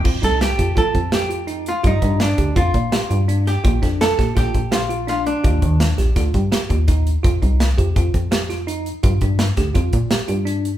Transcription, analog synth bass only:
X:1
M:5/4
L:1/8
Q:1/4=167
K:Fmix
V:1 name="Analog synth bass" clef=bass
F,, C,,2 F,, F,, F,,4- F,, | G,, G,,2 D,, F,, B,, z G,,3 | B,,, F,,2 B,,, B,,, B,,,4- B,,, | E,, E,,2 B,,, D,, G,, z E,,3 |
F,, C,,2 F,, F,, F,,4- F,, | G,, G,,2 D,, F,, B,, z G,,3 |]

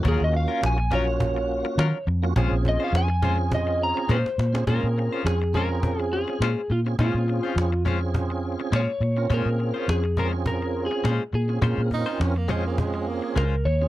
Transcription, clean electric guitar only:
X:1
M:4/4
L:1/16
Q:"Swing 16ths" 1/4=104
K:Bbm
V:1 name="Clean electric guitar"
[G,DFB] z2 [DFB] z2 [G,DFB] z4 z [G,DFB] z3 | [A,DFc] z2 [DFc] z2 [A,DFc] z4 z [A,DFc] z3 | [A,DFc] z2 [DFc] z2 [A,DFc] z4 z [A,DFc] z3 | [A,DFc] z2 [DFc] z2 [A,DFc] z4 z [A,DFc] z3 |
[A,DFc] z2 [DFc] z2 [A,DFc] z4 z [A,DFc] z3 | [A,DFc] z2 [DFc] z2 [A,DFc] z4 z [A,DFc] z3 |]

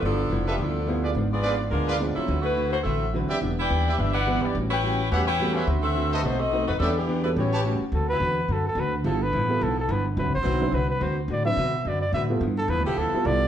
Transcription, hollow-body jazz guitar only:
X:1
M:4/4
L:1/8
Q:"Swing" 1/4=213
K:Dmix
V:1 name="Hollow-body jazz guitar"
[G,,=F,B,E] z [G,,F,B,E] z [G,,F,B,E] z [G,,F,B,E] z | [^G,,^E,B,D] z [G,,E,B,D] z [G,,E,B,D] z [G,,E,B,D] z | [D,CFB] z [D,CFB] z [D,CFB] z [D,CFB] z | [E,B,DG] z [E,B,DG] z [E,B,DG] z [E,B,DG] z |
[A,,G,^CF] z [A,,G,CF] z [A,,G,CF] z [A,,G,CF] z | [D,CFB] z [D,CFB] z [B,,A,C^D] z [B,,A,CD] z | [E,B,DG] z [E,B,DG] z [A,,G,^CF] z [A,,G,CF] z | [D,CFB] z [D,CFB] z [D,CFB] z [D,CFB] z |
[G,,=F,B,E] z [G,,F,B,E] z [G,,F,B,E] z [G,,F,B,E] z | [D,CFB] z [D,CFB] z [D,CFB] z [D,CFB] z | [D,CFB] z [D,CFB] z [D,CFB] z [D,CFB] z | [G,,=F,B,E] z [G,,F,B,E] z [G,,F,B,E] z [G,,F,B,E] z |]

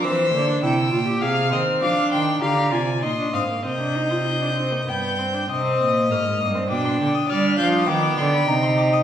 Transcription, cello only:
X:1
M:3/4
L:1/8
Q:1/4=100
K:Fm
V:1 name="Cello" clef=bass
=E, =D, C, B,, C, _E, | [K:Cm] F, E, D, C, B,, A,, | C,4 G,,2 | C, B,, A,, G,, =B,, D, |
G, F, E, D, C,2 |]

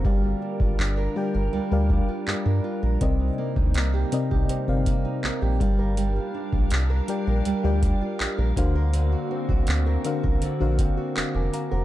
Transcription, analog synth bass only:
X:1
M:4/4
L:1/16
Q:1/4=81
K:Gphr
V:1 name="Analog synth bass" clef=bass
G,,,2 z A,,, G,,,2 z G,,, D,, D,,2 z G,, G,, z B,,, | C,,2 z D,, C,,2 z C,, G,,, G,,,2 z B,,, B,,, G,,,2- | G,,,2 z B,,, C,,2 z B,,, D,, D,,2 z B,,, B,,, D,,2- | D,,2 z C,, D,,2 z C,, ^A,,, A,,,2 z ^E,,, E,,, z E,,, |]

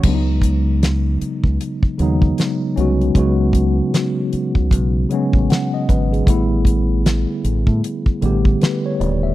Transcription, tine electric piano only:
X:1
M:4/4
L:1/16
Q:"Swing 16ths" 1/4=77
K:A
V:1 name="Tine electric piano"
z16 | z12 f ^d B G- | G z8 z3 B c d e |]
V:2 name="Tine electric piano" clef=bass
[C,F,G,B,D^D]6 z4 [C,F,G,B,D]4 [F,G,B,CF]2 | [C,F,G,B,F]6 z4 [C,F,G,B,C]4 z2 | [D,=G,A,B,E]6 z4 [D,G,A,B,=G]4 z2 |]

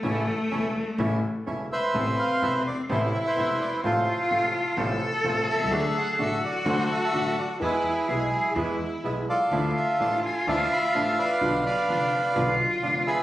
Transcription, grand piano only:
X:1
M:4/4
L:1/16
Q:1/4=127
K:A
V:1 name="Grand piano" clef=bass
[A,,,A,,C,E,A,E]2 z2 [E,,,E,,C,E,A,E]2 z2 [A,,,A,,C,E,A,E]2 z2 [E,,,E,,C,E,A,E]2 z2 | [K:Am] [A,,,A,,C,A,B,E]2 z2 [E,,,E,,C,A,B,E]2 z2 [A,,,A,,C,A,B,E]2 z2 [E,,,E,,C,A,B,E]2 z2 | [A,,,A,,C,F,A,F]2 z2 [A,,,A,,C,F,A,F]2 z2 [A,,,A,,C,F,A,F]2 z2 [A,,,A,,C,F,A,F]2 z/2 B,,,/2 C,,/2 ^C,,/2 | [D,,D,^F,A,^F]2 z2 [A,,,A,,D,F,A,F]2 z2 [D,,D,F,A,F]2 z2 [A,,,A,,D,F,A,F]2 z2 |
[E,,E,^G,B,^G]2 z2 [B,,,B,,E,G,B,G]2 z2 [E,,E,G,B,G]2 z2 [B,,,B,,E,G,B,G]2 z2 | [D,,D,E,A,DF]2 z2 [A,,,A,,E,A,DF]2 z2 [D,,D,E,A,DF]2 z2 [A,,,A,,E,A,DF]2 z2 | [B,,,B,,D,F,B,F]2 z2 [F,,,F,,D,F,B,F]2 z2 [B,,,B,,D,F,B,F]2 z2 [F,,,F,,D,F,B,F]2 z2 |]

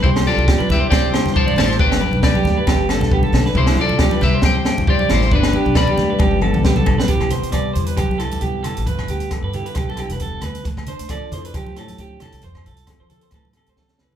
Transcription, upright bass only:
X:1
M:4/4
L:1/16
Q:"Swing 16ths" 1/4=135
K:C
V:1 name="Upright bass" clef=bass
C,,2 z C,,2 z C,, z C,2 z C,,2 z A,,,2 | G,,,2 z B,,,2 z D,, z G,,,3 B,,,3 B,,,2 | C,,2 z C,,2 z C,, z C,2 z C,,2 z A,,,2 | G,,,2 z B,,,2 z D,, z G,,,3 B,,,3 B,,,2 |
C,,2 z C,,2 z E,,2 z C,,3 C,,2 z A,,, | G,,,2 D,,2 z G,,2 z B,,,3 E,,,3 D,,2 | D,,2 z D,,2 z F,,2 z D,,3 D,,2 z C,, | F,,2 C,,2 z F,2 z A,,3 D,,3 C,,2 |]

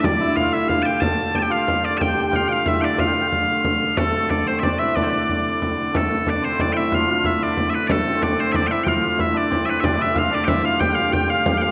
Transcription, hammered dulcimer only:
X:1
M:6/8
L:1/16
Q:3/8=123
K:Dm
V:1 name="Hammered dulcimer"
D2 E2 F2 E3/2 G/2 F2 G2 | A4 G G F6 | G2 G2 F2 F2 E2 D2 | F8- F2 z2 |
A,6 C2 D2 E2 | D8 z4 | A,4 D2 C3/2 E/2 D2 E2 | F2 F2 E2 D4 =B,2 |
A,2 C2 D2 C2 D2 E2 | F2 F2 E2 D2 C4 | D2 E2 F2 D2 E2 F2 | G2 F2 G2 F2 G2 F2 |]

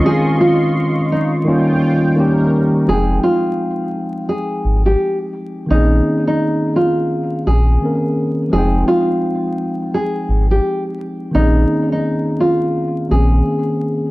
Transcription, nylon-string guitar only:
X:1
M:4/4
L:1/16
Q:"Swing 16ths" 1/4=85
K:Fm
V:1 name="Nylon-string guitar"
A2 F2 z2 E z8 z | A2 F6 A3 G2 z3 | E3 E3 F4 A6 | A2 F6 A3 G2 z3 |
E3 E3 F4 A6 |]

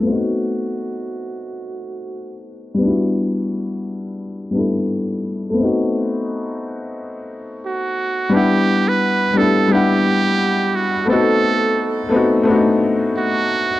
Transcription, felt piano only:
X:1
M:4/4
L:1/8
Q:"Swing 16ths" 1/4=87
K:Em
V:1 name="Felt piano"
[A,B,C^DF]8 | [G,B,DEF]4- [G,B,DEF] [G,B,DEA]3 | [A,B,C^DF]8 | [G,B,DEf]3 [G,B,DEG] [G,B,DEf]3 z |
[A,B,C^DF]3 [A,B,CDF] [A,B,C=D^DF]3 z |]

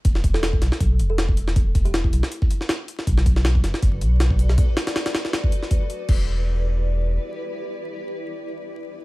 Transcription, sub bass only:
X:1
M:4/4
L:1/8
Q:"Swing 16ths" 1/4=159
K:Em
V:1 name="Sub bass" clef=bass
E,,,3 B,,, B,,, E,,,3 | E,,,3 B,,, z4 | B,,,3 F,,, F,,, B,,,3 | z8 |
E,,,6 z2 | z8 |]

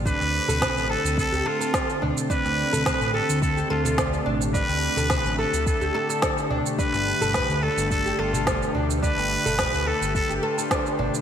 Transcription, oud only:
X:1
M:4/4
L:1/16
Q:1/4=107
K:Ddor
V:1 name="Oud"
D3 A c z A3 G A A d z D z | D3 A c z A3 G A A d z D z | D3 A c z A3 G A A d z D z | D3 A B z A3 G A A d z D z |
D3 A B z A3 G A A d z D z |]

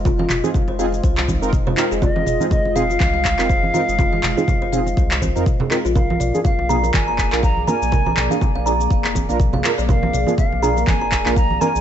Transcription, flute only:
X:1
M:4/4
L:1/8
Q:"Swing 16ths" 1/4=122
K:Fdor
V:1 name="Flute"
z8 | e2 e f4- f- | f6 z2 | f2 f2 a2 b a- |
a2 z6 | f2 f2 a2 b a |]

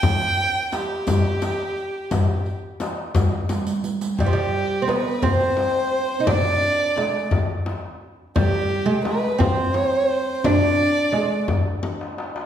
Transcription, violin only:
X:1
M:6/8
L:1/8
Q:3/8=58
K:none
V:1 name="Violin"
g2 G4- | G z4 z | G2 B c3 | d3 z3 |
G2 B c3 | d3 z3 |]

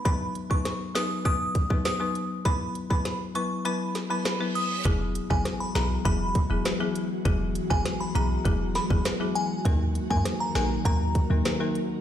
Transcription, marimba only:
X:1
M:4/4
L:1/16
Q:1/4=100
K:Fblyd
V:1 name="Marimba"
[^F,=B,^D=B]3 [F,B,DB] z2 [F,B,DB] z [F,B,DB] z2 [F,B,DB] z [F,B,DB] z2 | [^F,=B,=E=B]3 [F,B,EB] z2 [F,B,EB] z [F,B,EB] z2 [F,B,EB] z [F,B,EB] z2 | [^F,=B,=E^G]3 [F,B,EG] z2 [F,B,EG] z [F,B,EG] z2 [F,B,EG] z [F,B,EG] z2 | [^F,=B,=E^G]3 [F,B,EG] z2 [F,B,EG] z [F,B,EG] z2 [F,B,EG] z [F,B,EG] z2 |
[G,B,EB]3 [G,B,EB] z2 [G,B,EB] z [G,B,EB] z2 [G,B,EB] z [G,B,EB] z2 |]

